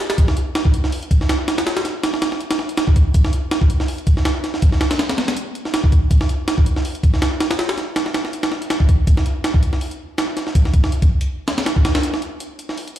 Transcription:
0.10 snare, closed hi-hat
0.18 kick, closed hi-hat
0.28 snare
0.37 closed hi-hat
0.55 snare, closed hi-hat
0.65 kick
0.74 closed hi-hat
0.84 snare
0.92 open hi-hat
1.03 closed hi-hat
1.11 kick, closed hi-hat
1.21 snare
1.29 snare, closed hi-hat
1.48 snare, closed hi-hat
1.58 snare, closed hi-hat
1.67 snare, closed hi-hat
1.77 snare, closed hi-hat
1.85 snare, closed hi-hat
2.03 snare, closed hi-hat
2.14 snare
2.22 snare, closed hi-hat
2.32 snare
2.40 closed hi-hat
2.51 snare, closed hi-hat
2.59 snare
2.69 closed hi-hat
2.77 snare, closed hi-hat
2.88 kick
2.96 kick, closed hi-hat
3.14 kick, closed hi-hat
3.25 snare
3.33 closed hi-hat
3.51 snare, closed hi-hat
3.61 kick
3.70 closed hi-hat
3.80 snare
3.88 open hi-hat
3.98 closed hi-hat
4.07 kick, closed hi-hat
4.17 snare
4.25 snare, closed hi-hat
4.44 snare, closed hi-hat
4.54 snare
4.62 kick, closed hi-hat
4.72 snare
4.81 snare, closed hi-hat
4.91 snare, closed hi-hat
4.99 snare, closed hi-hat
5.09 snare, closed hi-hat
5.18 snare, closed hi-hat
5.28 snare, closed hi-hat
5.37 closed hi-hat
5.55 closed hi-hat
5.65 snare
5.74 snare, closed hi-hat
5.84 kick
5.92 kick, closed hi-hat
6.11 kick, closed hi-hat
6.21 snare
6.29 closed hi-hat
6.48 snare, closed hi-hat
6.58 kick
6.66 closed hi-hat
6.76 snare
6.85 open hi-hat
6.95 closed hi-hat
7.03 kick, closed hi-hat
7.14 snare
7.22 snare, closed hi-hat
7.40 snare, closed hi-hat
7.51 snare, closed hi-hat
7.59 snare, closed hi-hat
7.69 snare, closed hi-hat
7.78 snare, closed hi-hat
7.96 snare, closed hi-hat
8.06 snare
8.14 snare, closed hi-hat
8.25 snare
8.33 closed hi-hat
8.43 snare, closed hi-hat
8.52 snare
8.62 closed hi-hat
8.70 snare, closed hi-hat
8.80 kick
8.89 kick, closed hi-hat
9.07 kick, closed hi-hat
9.17 snare
9.26 closed hi-hat
9.44 snare, closed hi-hat
9.54 kick
9.63 closed hi-hat
9.73 snare
9.81 open hi-hat
9.91 closed hi-hat
10.18 snare, closed hi-hat
10.37 snare, closed hi-hat
10.47 snare
10.55 kick, closed hi-hat
10.65 snare
10.74 kick, closed hi-hat
10.84 snare
10.92 closed hi-hat
11.02 kick, closed hi-hat
11.21 closed hi-hat
11.48 snare, closed hi-hat
11.58 snare, closed hi-hat
11.66 snare, closed hi-hat
11.76 kick
11.85 snare, closed hi-hat
11.95 snare, closed hi-hat
12.03 closed hi-hat
12.14 snare
12.22 closed hi-hat
12.40 closed hi-hat
12.59 closed hi-hat
12.69 snare
12.78 open hi-hat
12.88 closed hi-hat
12.96 closed hi-hat

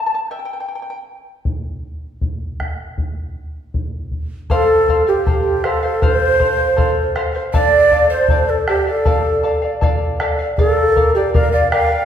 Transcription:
0.06 A5
0.15 A5
0.31 E5 G5
0.39 G5
0.45 G5
0.53 G5
0.60 G5
0.68 G5
0.75 G5
0.82 G5
0.90 G5
1.45 bombo low
2.21 bombo low
2.60 bombo rim, bombo low
2.98 bombo low
3.74 bombo low
4.11 bombo low
4.50 A4 A#4 C5 F5, bombo low
4.55 A4
4.88 A4 C5 F5, bombo low
5.07 G4 C5 F5
5.26 A4 C5 F5, bombo low
5.64 A4 C5 F5, bombo rim
5.83 C5 F5
6.02 A4 B4 C5 F5, bombo low
6.16 C5
6.39 A4 C5 F5, bombo low
6.58 C5 F5
6.77 A4 C5 F5, bombo low
7.15 A4 C5 F5, bombo rim
7.35 C5 F5
7.53 A4 D5 F5, bombo low
7.91 A4 D5 F5, bombo low
8.10 C5 D5 F5
8.28 A4 D5 F5, bombo low
8.49 A4
8.68 G4 A4 D5 F5, bombo rim
8.87 A4 D5 F5
9.05 A4 D5 F5, bombo low
9.43 A4 D5 F5
9.62 D5 F5
9.81 A4 D5 F5, bombo low
10.20 A4 D5 F5, bombo rim
10.39 D5 F5
10.57 A4 A#4 D5 F5, bombo low
10.96 A#4 D5 F5, bombo low
11.15 G4 A4 D5 F5
11.34 A#4 D5 F5, bombo low
11.52 D5 F5
11.71 A#4 D5 F5 G5, bombo rim
11.91 D5 F5

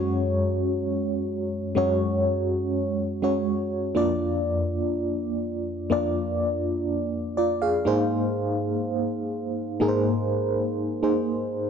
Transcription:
Already playing: F#2 G#3 C#4 F#4 C#5
1.75 F#2 G#3 C#4 F#4 C#5
3.22 G#3 C#4 F#4 C#5
3.95 F2 A#3 D4 F4 D5
5.90 F2 A#3 D4 F4 D5
7.37 F4 D5
7.62 G#4 F5
7.85 G#2 A#3 D#4 G#4 C5
9.80 G#2 A#3 D#4 G#4 A#4
9.88 C5
11.03 A#3 D#4 G#4 C5

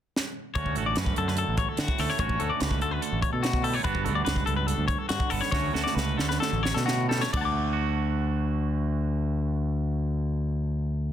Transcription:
0.16 snare
0.55 D2 A3 C#4 F#4 C#5, kick, closed hi-hat
0.66 kick
0.76 A1 F#4 A4, closed hi-hat
0.86 D5
0.96 F#2 B4, snare, closed hi-hat
1.06 kick
1.16 F#2 D3 A4, closed hi-hat
1.28 B4, snare
1.37 A4, closed hi-hat
1.48 A1
1.57 C#5, kick, closed hi-hat
1.69 A4
1.77 A2 D3 F#4, snare, closed hi-hat
1.88 kick
1.98 D2 A3 A4, snare, open hi-hat
2.09 C#5, snare
2.18 A1 D2 A3 C#4 F#4 C#5, kick, closed hi-hat
2.29 kick
2.39 D2 F#4 A4, closed hi-hat
2.50 D5
2.60 C#2 B4, snare, closed hi-hat
2.71 kick
2.81 D2 D3 A4, closed hi-hat
2.91 B4
3.02 A4, closed hi-hat
3.12 A1
3.22 C#5, kick, closed hi-hat
3.33 B2 A4
3.43 A2 F#4, snare, closed hi-hat
3.53 kick
3.64 G3 A4, open hi-hat
3.73 A3 C#5
3.83 G1 G2 B3 D4 F#4 B4, kick, closed hi-hat
3.95 kick
4.05 D2 F#4 A4, closed hi-hat
4.15 D5
4.25 C#2 B4, snare, closed hi-hat
4.36 kick
4.46 C#2 A4, closed hi-hat
4.56 B4
4.67 A4, closed hi-hat
4.78 D2
4.88 C#5, kick, closed hi-hat
4.98 A4
5.09 G2 D3 F#4, snare, closed hi-hat
5.20 kick
5.30 G1 B3 A4, open hi-hat
5.41 C#5, snare
5.51 D2 A3 C#4 F#4 C#5, kick, snare
5.74 D2 F#4 A4, snare
5.84 D5, snare
5.95 C#2 B4, snare
6.17 D2 D3 A4, snare
6.29 B4, snare
6.40 A4, snare
6.53 A1
6.63 C#5, snare
6.74 B2 A4, snare
6.86 A2 F#4, snare
7.09 G3 A4, snare
7.21 A3 C#5, snare
7.33 D2 D5, kick, crash
7.37 F#5
7.41 D3 A5
7.45 D6
7.52 A3
7.73 F#4

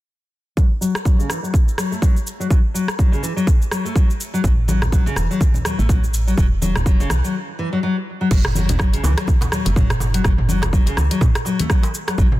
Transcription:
0.57 F#3, kick, shaker
0.81 F#3, shaker
0.95 cross-stick, shaker
1.05 F#3, kick, shaker
1.19 C#3, shaker
1.29 E3, cross-stick, shaker
1.43 F#3, shaker
1.54 kick, shaker
1.68 shaker
1.78 F#3, cross-stick, shaker
1.92 A3, shaker
2.02 F#3, kick, shaker
2.17 shaker
2.27 shaker
2.40 F#3, shaker
2.50 F#3, kick, shaker
2.74 F#3, shaker
2.88 cross-stick, shaker
2.98 F#3, kick, shaker
3.12 C#3, shaker
3.23 E3, shaker
3.36 F#3, shaker
3.47 kick, shaker
3.62 shaker
3.71 F#3, cross-stick, shaker
3.85 A3, shaker
3.95 F#3, kick, shaker
4.10 shaker
4.20 shaker
4.34 F#3, shaker
4.44 A1 F#3, kick, low conga, shaker
4.68 F#3, high conga, shaker
4.82 cross-stick, high conga, low conga, shaker
4.92 F#3, kick, shaker
5.06 C#3, shaker
5.16 E1 E3, cross-stick, high conga, shaker
5.31 F#3, shaker
5.41 kick, high conga, shaker
5.54 low conga, shaker
5.65 F#3, cross-stick, high conga, shaker
5.79 A1 A3, shaker
5.89 F#3, kick, low conga, shaker
6.04 shaker
6.14 shaker
6.27 F#3, shaker
6.37 E1 F#3, kick, low conga, shaker
6.62 F#3, high conga, shaker
6.75 cross-stick, high conga, low conga, shaker
6.86 F#3, kick, shaker
7.00 C#3, shaker
7.10 B1 E3, cross-stick, high conga, shaker
7.24 F#3, shaker
7.59 E3
7.73 F#3
7.83 F#3
8.21 F#3
8.31 F#1 F#3, kick, crash, low conga, shaker
8.45 cross-stick, mid tom, darbuka tek
8.55 F#3, high conga, shaker
8.69 closed hi-hat, high conga, low conga, shaker
8.79 F#3, kick, cross-stick, darbuka tek, shaker
8.93 C#3, closed hi-hat, shaker
9.04 C#2 E3, darbuka ka, darbuka tek, high conga, shaker
9.18 F#3, cross-stick, closed hi-hat, shaker
9.27 kick, high conga, shaker
9.41 closed hi-hat, darbuka ka, darbuka tek, low conga, shaker
9.52 F#3, cross-stick, high conga, shaker
9.65 F#1 A3, closed hi-hat, darbuka tek, shaker
9.76 F#3, kick, mid tom, low conga, shaker
9.90 cross-stick, closed hi-hat, darbuka dum, shaker
10.00 mid tom, darbuka tek, shaker
10.14 F#3, closed hi-hat, shaker
10.24 F#1 F#3, kick, cross-stick, darbuka tek, low conga, shaker
10.38 mid tom
10.49 F#3, high conga, shaker
10.62 cross-stick, closed hi-hat, darbuka tek, high conga, low conga, shaker
10.73 F#3, kick, shaker
10.86 C#3, closed hi-hat, darbuka tek, shaker
10.97 C#2 E3, cross-stick, darbuka ka, high conga, shaker
11.11 F#3, closed hi-hat, shaker
11.21 kick, mid tom, darbuka tek, darbuka dum, shaker
11.35 cross-stick, closed hi-hat, shaker
11.45 F#3, darbuka tek, shaker
11.59 A3, closed hi-hat, high conga, shaker
11.70 F#3, kick, cross-stick, shaker
11.83 closed hi-hat, darbuka ka, darbuka tek, shaker
11.94 shaker
12.08 F#3, cross-stick, closed hi-hat, darbuka tek, shaker
12.18 A1 F#3, kick, low conga, shaker
12.32 mid tom

